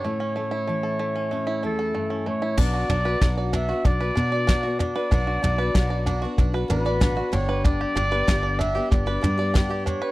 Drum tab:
CC |--------|x-------|--------|--------|
SD |--------|--o---o-|--o---o-|--o---o-|
FT |--------|oooooooo|oooooooo|oooooooo|
BD |--------|o-o-o-o-|o-o-o-o-|o-o-o-o-|